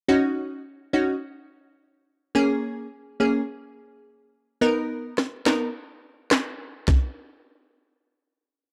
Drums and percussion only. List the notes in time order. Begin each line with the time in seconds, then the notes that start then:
5.18 cross-stick, snare
5.46 snare, clap
6.31 cross-stick, snare, clap
6.88 kick, snare